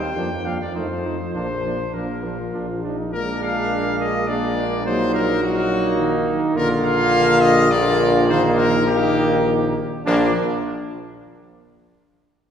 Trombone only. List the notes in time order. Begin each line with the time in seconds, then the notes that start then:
0.17 F3
0.46 F3
0.76 F3
1.05 F3
1.35 F3
1.64 F3
1.95 F3
2.24 F3
2.54 F3
2.84 F3
3.13 G#3
4.29 G#3
4.86 F#3
5.43 F#3
6.00 D#3
6.57 D3
7.71 D3
8.28 D#3
8.87 D#3
10.06 F3